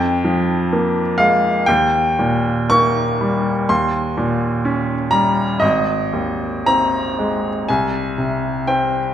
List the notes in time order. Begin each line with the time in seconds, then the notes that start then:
Already playing: F2 G5
0.24 F3
0.73 A#3
1.18 G#3 F5
1.66 D#2 G5
2.19 A#2
2.70 A#3 C#6
3.21 G3
3.69 D#2 C6
4.17 A#2
4.65 C#4
5.11 G3 A#5
5.60 G#1 D#5
6.13 D#2
6.66 C4 A#5
7.19 G#3
7.68 C2 G#5
8.18 C3
8.67 C4 G5